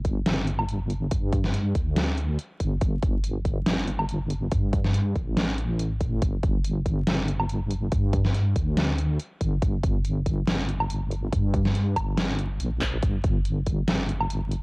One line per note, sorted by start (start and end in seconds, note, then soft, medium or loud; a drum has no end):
0.00 0.25 G1 medium
0.05 kick medium
0.05 closed hi-hat medium
0.26 1.10 G1 medium
0.26 snare loud
0.26 closed hi-hat medium
0.47 closed hi-hat medium
0.59 low woodblock soft
0.69 closed hi-hat medium
0.90 closed hi-hat medium
1.11 1.73 G2 medium
1.11 kick loud
1.11 closed hi-hat medium
1.32 kick loud
1.32 closed hi-hat medium
1.44 snare soft
1.54 closed hi-hat medium
1.75 2.37 D2 medium
1.75 kick medium
1.75 closed hi-hat medium
1.96 snare loud
1.96 closed hi-hat medium
2.18 closed hi-hat medium
2.39 closed hi-hat medium
2.60 2.80 G1 medium
2.60 kick medium
2.60 closed hi-hat medium
2.81 3.65 G1 loud
2.81 kick loud
2.81 closed hi-hat medium
3.03 kick loud
3.03 closed hi-hat medium
3.24 closed hi-hat medium
3.45 kick medium
3.45 closed hi-hat soft
3.66 4.50 G1 medium
3.66 snare loud
3.66 closed hi-hat medium
3.88 closed hi-hat medium
3.99 low woodblock soft
4.09 closed hi-hat medium
4.30 closed hi-hat medium
4.51 5.14 G2 medium
4.51 kick loud
4.51 closed hi-hat medium
4.73 kick loud
4.73 closed hi-hat medium
4.84 snare soft
4.94 closed hi-hat medium
5.15 6.20 A1 medium
5.15 kick medium
5.15 closed hi-hat soft
5.37 snare loud
5.37 closed hi-hat medium
5.58 closed hi-hat medium
5.79 closed hi-hat medium
6.00 kick medium
6.00 closed hi-hat soft
6.22 7.05 G1 medium
6.22 kick loud
6.22 closed hi-hat medium
6.43 kick loud
6.43 closed hi-hat soft
6.64 closed hi-hat medium
6.86 kick medium
6.86 closed hi-hat soft
7.07 7.91 G1 loud
7.07 snare loud
7.07 closed hi-hat medium
7.28 closed hi-hat soft
7.40 low woodblock soft
7.49 closed hi-hat medium
7.71 closed hi-hat medium
7.92 8.54 G2 medium
7.92 kick loud
7.92 closed hi-hat medium
8.13 kick loud
8.13 closed hi-hat soft
8.25 snare soft
8.34 closed hi-hat medium
8.56 9.18 D2 medium
8.56 kick medium
8.56 closed hi-hat soft
8.77 snare loud
8.77 closed hi-hat medium
8.98 closed hi-hat soft
9.20 closed hi-hat medium
9.41 9.61 G1 medium
9.41 kick medium
9.41 closed hi-hat soft
9.62 10.46 G1 medium
9.62 kick loud
9.62 closed hi-hat medium
9.83 kick loud
9.83 closed hi-hat medium
10.05 closed hi-hat medium
10.26 kick medium
10.26 closed hi-hat soft
10.47 11.31 G1 medium
10.47 snare loud
10.47 closed hi-hat medium
10.69 closed hi-hat soft
10.80 low woodblock medium
10.90 closed hi-hat medium
11.11 closed hi-hat soft
11.32 11.95 G2 medium
11.32 kick loud
11.32 closed hi-hat medium
11.54 kick loud
11.54 closed hi-hat medium
11.65 snare soft
11.75 closed hi-hat medium
11.96 12.59 G1 loud
11.96 kick medium
11.96 closed hi-hat soft
11.96 low woodblock medium
12.17 snare loud
12.17 closed hi-hat medium
12.39 closed hi-hat medium
12.60 13.01 A#1 loud
12.60 closed hi-hat medium
12.81 kick medium
12.81 clap medium
12.81 closed hi-hat medium
13.03 13.86 G1 loud
13.03 kick loud
13.03 closed hi-hat medium
13.24 kick loud
13.24 closed hi-hat medium
13.45 closed hi-hat medium
13.66 kick medium
13.66 closed hi-hat medium
13.88 14.63 G1 loud
13.88 snare loud
13.88 closed hi-hat medium
14.09 closed hi-hat medium
14.21 low woodblock medium
14.30 closed hi-hat medium
14.52 closed hi-hat medium